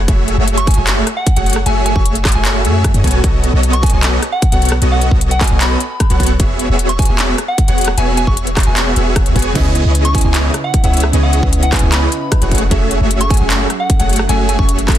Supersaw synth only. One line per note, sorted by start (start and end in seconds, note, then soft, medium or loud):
0.08 0.35 A3 medium
0.08 0.35 F#4 medium
0.08 0.35 G#4 medium
0.08 0.35 C#5 medium
0.08 0.35 E5 medium
0.38 0.75 A3 medium
0.38 0.75 F#4 medium
0.38 0.75 G#4 medium
0.38 0.75 C#5 medium
0.38 0.75 E5 medium
0.77 1.04 A3 loud
0.77 1.04 F#4 medium
0.77 1.04 G#4 medium
0.77 1.04 C#5 medium
0.77 1.04 E5 loud
1.36 1.57 A3 medium
1.36 1.57 F#4 medium
1.36 1.57 G#4 medium
1.36 1.57 C#5 medium
1.36 1.57 F#5 loud
1.66 1.93 A3 medium
1.66 1.93 F#4 medium
1.66 1.93 G#4 medium
1.66 1.93 C#5 medium
1.66 1.93 E5 medium
1.96 2.33 A3 medium
1.96 2.33 F#4 medium
1.96 2.33 G#4 medium
1.96 2.33 C#5 medium
1.96 2.33 E5 medium
2.35 2.62 A3 loud
2.35 2.62 F#4 medium
2.35 2.62 G#4 medium
2.35 2.62 C#5 medium
2.35 2.62 E5 loud
2.65 2.92 A3 medium
2.65 2.92 F#4 medium
2.65 2.92 G#4 medium
2.65 2.92 C#5 medium
2.65 2.92 E5 medium
2.94 3.03 A3 medium
2.94 3.03 F#4 medium
2.94 3.03 G#4 medium
2.94 3.03 C#5 medium
2.94 3.03 D#5 medium
3.04 3.21 B3 loud
3.04 3.21 F#4 medium
3.04 3.21 A4 medium
3.04 3.21 C#5 medium
3.04 3.21 G#5 loud
3.24 3.51 B3 medium
3.24 3.51 F#4 medium
3.24 3.51 A4 medium
3.24 3.51 C#5 medium
3.24 3.51 D#5 medium
3.53 3.91 B3 medium
3.53 3.91 F#4 medium
3.53 3.91 A4 medium
3.53 3.91 C#5 medium
3.53 3.91 D#5 medium
3.93 4.20 B3 loud
3.93 4.20 F#4 medium
3.93 4.20 A4 medium
3.93 4.20 C#5 medium
3.93 4.20 D#5 loud
4.52 4.73 B3 loud
4.52 4.73 F#4 medium
4.52 4.73 A4 medium
4.52 4.73 C#5 medium
4.52 4.73 F#5 loud
4.82 5.09 B3 medium
4.82 5.09 F#4 medium
4.82 5.09 A4 medium
4.82 5.09 C#5 medium
4.82 5.09 D#5 medium
5.11 5.49 B3 medium
5.11 5.49 F#4 medium
5.11 5.48 A4 medium
5.11 5.49 C#5 medium
5.11 5.49 D#5 medium
5.51 5.78 B3 loud
5.51 5.78 F#4 medium
5.51 5.78 A4 medium
5.51 5.78 C#5 medium
5.51 5.78 D#5 loud
6.10 6.31 B3 medium
6.10 6.31 F#4 medium
6.10 6.31 A4 medium
6.10 6.31 C#5 medium
6.10 6.31 F#5 loud
6.40 6.67 B3 medium
6.40 6.67 F#4 medium
6.40 6.67 G#4 medium
6.40 6.67 C#5 medium
6.40 6.67 E5 medium
6.69 7.06 B3 medium
6.69 7.06 F#4 medium
6.69 7.06 G#4 medium
6.69 7.06 C#5 medium
6.69 7.06 E5 medium
7.09 7.36 B3 loud
7.09 7.36 F#4 medium
7.09 7.36 G#4 medium
7.09 7.36 C#5 medium
7.09 7.36 E5 loud
7.68 7.88 B3 medium
7.68 7.88 F#4 medium
7.68 7.88 G#4 medium
7.68 7.88 C#5 medium
7.68 7.88 F#5 loud
7.98 8.25 B3 medium
7.98 8.25 F#4 medium
7.98 8.25 G#4 medium
7.98 8.25 C#5 medium
7.98 8.25 E5 medium
8.27 8.64 B3 medium
8.27 8.64 F#4 medium
8.27 8.64 G#4 medium
8.27 8.64 C#5 medium
8.27 8.64 E5 medium
8.67 8.94 B3 loud
8.67 8.94 F#4 medium
8.67 8.94 G#4 medium
8.67 8.94 C#5 medium
8.67 8.94 E5 loud
8.96 9.24 B3 medium
8.96 9.24 F#4 medium
8.96 9.24 G#4 medium
8.96 9.23 C#5 medium
8.96 9.23 E5 medium
9.26 9.34 B3 medium
9.26 9.34 F#4 medium
9.26 9.34 G#4 medium
9.26 9.34 C#5 medium
9.26 9.34 E5 medium
9.36 9.53 B3 loud
9.36 9.53 F#4 medium
9.36 9.53 G#4 medium
9.36 9.53 C#5 medium
9.36 9.53 G#5 loud
9.55 9.83 B3 medium
9.55 9.83 E4 medium
9.55 9.83 G#4 medium
9.55 9.83 C#5 medium
9.55 9.83 D#5 medium
9.85 10.22 B3 medium
9.85 10.22 E4 medium
9.85 10.22 G#4 medium
9.85 10.22 C#5 medium
9.85 10.22 D#5 medium
10.24 10.52 B3 loud
10.24 10.52 E4 medium
10.24 10.52 G#4 medium
10.24 10.52 C#5 medium
10.24 10.52 D#5 loud
10.84 11.04 B3 medium
10.84 11.04 E4 medium
10.84 11.04 G#4 medium
10.84 11.04 C#5 medium
10.84 11.04 E5 loud
11.13 11.41 B3 medium
11.13 11.41 E4 medium
11.13 11.41 G#4 medium
11.13 11.41 C#5 medium
11.13 11.41 D#5 medium
11.43 11.80 B3 medium
11.43 11.80 E4 medium
11.43 11.80 G#4 medium
11.43 11.80 C#5 medium
11.43 11.80 D#5 medium
11.82 12.10 B3 loud
11.82 12.10 E4 medium
11.82 12.10 G#4 medium
11.82 12.09 C#5 medium
11.82 12.10 D#5 loud
12.42 12.62 A3 medium
12.42 12.62 F#4 medium
12.42 12.62 G#4 medium
12.42 12.62 C#5 medium
12.42 12.62 F#5 loud
12.71 12.98 A3 medium
12.71 12.98 F#4 medium
12.71 12.98 G#4 medium
12.71 12.98 C#5 medium
12.71 12.98 E5 medium
13.01 13.38 A3 medium
13.01 13.38 F#4 medium
13.01 13.38 G#4 medium
13.01 13.38 C#5 medium
13.01 13.38 E5 medium
13.40 13.68 A3 loud
13.40 13.68 F#4 medium
13.40 13.68 G#4 medium
13.40 13.68 C#5 medium
13.40 13.68 E5 loud
13.99 14.20 A3 loud
13.99 14.20 F#4 medium
13.99 14.20 G#4 medium
13.99 14.20 C#5 medium
13.99 14.20 F#5 loud
14.29 14.56 A3 medium
14.29 14.56 F#4 medium
14.29 14.56 G#4 medium
14.29 14.56 C#5 medium
14.29 14.56 E5 medium
14.59 14.96 A3 medium
14.59 14.96 F#4 medium
14.59 14.96 G#4 medium
14.59 14.96 C#5 medium
14.59 14.96 E5 medium